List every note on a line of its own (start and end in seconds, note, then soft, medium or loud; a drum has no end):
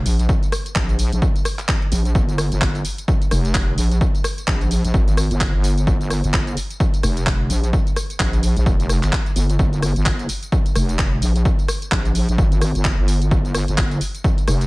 0.06 0.27 A#1 medium
0.06 open hi-hat loud
0.06 tambourine medium
0.19 closed hi-hat medium
0.19 tambourine soft
0.29 kick loud
0.29 tambourine soft
0.43 closed hi-hat soft
0.43 tambourine soft
0.52 cross-stick medium
0.52 open hi-hat loud
0.52 tambourine medium
0.66 closed hi-hat medium
0.66 tambourine soft
0.76 1.10 A#1 loud
0.76 kick loud
0.76 clap loud
0.76 tambourine soft
0.89 closed hi-hat soft
0.89 tambourine soft
0.99 open hi-hat loud
0.99 tambourine medium
1.12 1.20 A#1 loud
1.12 closed hi-hat medium
1.12 tambourine soft
1.22 kick loud
1.22 tambourine soft
1.36 closed hi-hat medium
1.36 tambourine soft
1.45 cross-stick medium
1.45 open hi-hat loud
1.45 tambourine medium
1.59 clap soft
1.59 closed hi-hat medium
1.59 tambourine soft
1.69 kick loud
1.69 clap loud
1.69 tambourine soft
1.82 closed hi-hat soft
1.92 2.13 A#1 loud
1.92 open hi-hat loud
1.92 tambourine medium
2.05 closed hi-hat medium
2.05 tambourine soft
2.15 2.50 G1 loud
2.15 kick loud
2.15 tambourine soft
2.29 closed hi-hat soft
2.29 tambourine soft
2.38 cross-stick medium
2.38 open hi-hat loud
2.38 tambourine medium
2.52 2.60 G1 medium
2.52 closed hi-hat medium
2.52 tambourine soft
2.61 2.83 G1 loud
2.61 kick loud
2.61 clap loud
2.61 tambourine soft
2.75 closed hi-hat medium
2.75 tambourine soft
2.85 open hi-hat loud
2.85 tambourine medium
2.98 closed hi-hat medium
2.98 tambourine soft
3.08 kick loud
3.08 tambourine soft
3.22 closed hi-hat medium
3.22 tambourine soft
3.31 3.76 F1 loud
3.31 cross-stick medium
3.31 open hi-hat loud
3.31 tambourine medium
3.45 closed hi-hat medium
3.45 tambourine soft
3.55 kick loud
3.55 clap loud
3.55 tambourine soft
3.78 4.00 A#1 loud
3.78 open hi-hat loud
3.78 tambourine medium
3.91 closed hi-hat medium
3.91 tambourine soft
4.01 kick loud
4.01 tambourine soft
4.15 closed hi-hat soft
4.15 tambourine soft
4.24 cross-stick medium
4.24 open hi-hat loud
4.24 tambourine medium
4.38 closed hi-hat medium
4.38 tambourine soft
4.48 4.82 A#1 loud
4.48 kick loud
4.48 clap loud
4.48 tambourine soft
4.61 closed hi-hat medium
4.61 tambourine soft
4.71 open hi-hat loud
4.71 tambourine medium
4.84 4.93 A#1 medium
4.84 closed hi-hat medium
4.84 tambourine soft
4.94 5.29 G#1 loud
4.94 kick loud
4.94 tambourine soft
5.08 closed hi-hat medium
5.08 tambourine soft
5.17 cross-stick medium
5.17 open hi-hat loud
5.17 tambourine medium
5.31 5.52 G1 loud
5.31 closed hi-hat medium
5.31 tambourine soft
5.41 kick loud
5.41 clap loud
5.41 tambourine soft
5.54 5.86 G1 loud
5.64 open hi-hat loud
5.64 tambourine medium
5.78 closed hi-hat medium
5.78 tambourine soft
5.87 6.22 G1 loud
5.87 kick loud
5.87 tambourine soft
6.01 closed hi-hat soft
6.01 tambourine soft
6.10 cross-stick medium
6.10 open hi-hat loud
6.10 tambourine medium
6.24 6.32 G1 loud
6.24 closed hi-hat medium
6.24 tambourine soft
6.34 6.55 G1 loud
6.34 kick loud
6.34 clap loud
6.34 tambourine soft
6.47 closed hi-hat medium
6.47 tambourine soft
6.57 open hi-hat loud
6.57 tambourine medium
6.70 closed hi-hat medium
6.70 tambourine soft
6.80 kick loud
6.80 tambourine soft
6.94 closed hi-hat medium
6.94 tambourine soft
7.03 7.48 F1 loud
7.03 cross-stick medium
7.03 open hi-hat loud
7.03 tambourine medium
7.17 closed hi-hat medium
7.17 tambourine soft
7.27 kick loud
7.27 clap loud
7.27 tambourine soft
7.50 7.72 A#1 loud
7.50 open hi-hat loud
7.50 tambourine medium
7.64 closed hi-hat medium
7.64 tambourine soft
7.73 kick loud
7.73 tambourine soft
7.87 closed hi-hat soft
7.87 tambourine soft
7.96 cross-stick medium
7.96 open hi-hat loud
7.96 tambourine medium
8.10 closed hi-hat medium
8.10 tambourine soft
8.20 8.54 A#1 loud
8.20 kick loud
8.20 clap loud
8.20 tambourine soft
8.33 closed hi-hat medium
8.33 tambourine soft
8.43 open hi-hat loud
8.43 tambourine medium
8.57 8.65 A#1 loud
8.57 closed hi-hat medium
8.57 tambourine soft
8.66 9.01 F1 loud
8.66 kick loud
8.66 tambourine soft
8.80 closed hi-hat medium
8.80 tambourine soft
8.89 cross-stick medium
8.89 open hi-hat loud
8.89 tambourine medium
9.03 9.11 G1 loud
9.03 clap soft
9.03 closed hi-hat medium
9.03 tambourine soft
9.13 kick loud
9.13 clap loud
9.13 tambourine soft
9.26 closed hi-hat soft
9.26 tambourine soft
9.36 9.58 G1 medium
9.36 open hi-hat loud
9.36 tambourine medium
9.50 closed hi-hat medium
9.50 tambourine soft
9.59 9.94 G1 loud
9.59 kick loud
9.59 tambourine soft
9.73 closed hi-hat soft
9.73 tambourine soft
9.82 cross-stick medium
9.82 open hi-hat loud
9.82 tambourine medium
9.96 10.04 G1 loud
9.96 closed hi-hat medium
9.96 tambourine soft
10.06 10.27 G1 loud
10.06 kick loud
10.06 clap loud
10.06 tambourine soft
10.19 closed hi-hat medium
10.19 tambourine soft
10.29 open hi-hat loud
10.29 tambourine medium
10.43 closed hi-hat medium
10.43 tambourine soft
10.52 kick loud
10.52 tambourine soft
10.66 closed hi-hat medium
10.66 tambourine soft
10.76 11.21 F1 loud
10.76 cross-stick medium
10.76 open hi-hat loud
10.76 tambourine medium
10.89 closed hi-hat medium
10.89 tambourine soft
10.99 kick loud
10.99 clap loud
10.99 tambourine soft
11.22 11.44 A#1 loud
11.22 open hi-hat loud
11.22 tambourine medium
11.36 closed hi-hat medium
11.36 tambourine soft
11.45 kick loud
11.45 tambourine soft
11.59 closed hi-hat soft
11.59 tambourine soft
11.68 cross-stick medium
11.68 open hi-hat loud
11.68 tambourine medium
11.82 closed hi-hat medium
11.82 tambourine soft
11.92 12.27 A#1 loud
11.92 kick loud
11.92 clap loud
11.92 tambourine soft
12.05 closed hi-hat medium
12.05 tambourine soft
12.15 open hi-hat loud
12.15 tambourine medium
12.29 12.37 A#1 loud
12.29 closed hi-hat medium
12.29 tambourine soft
12.38 12.73 G#1 loud
12.38 kick loud
12.38 tambourine soft
12.52 closed hi-hat medium
12.52 tambourine soft
12.62 cross-stick medium
12.62 open hi-hat loud
12.62 tambourine medium
12.75 12.96 G1 medium
12.75 closed hi-hat medium
12.75 tambourine soft
12.85 kick loud
12.85 clap loud
12.85 tambourine soft
12.98 13.30 G1 loud
13.08 open hi-hat loud
13.08 tambourine medium
13.22 closed hi-hat medium
13.22 tambourine soft
13.31 13.66 G1 loud
13.31 kick loud
13.31 tambourine soft
13.45 closed hi-hat soft
13.45 tambourine soft
13.54 cross-stick medium
13.54 open hi-hat loud
13.54 tambourine medium
13.68 13.76 G1 loud
13.68 closed hi-hat medium
13.68 tambourine soft
13.78 14.00 G1 loud
13.78 kick loud
13.78 clap loud
13.78 tambourine soft
13.91 closed hi-hat medium
13.91 tambourine soft
14.01 open hi-hat loud
14.01 tambourine medium
14.15 closed hi-hat medium
14.15 tambourine soft
14.24 kick loud
14.24 tambourine soft
14.38 closed hi-hat medium
14.38 tambourine soft
14.48 14.67 F1 loud
14.48 cross-stick medium
14.48 open hi-hat loud
14.48 tambourine medium
14.61 closed hi-hat medium
14.61 tambourine soft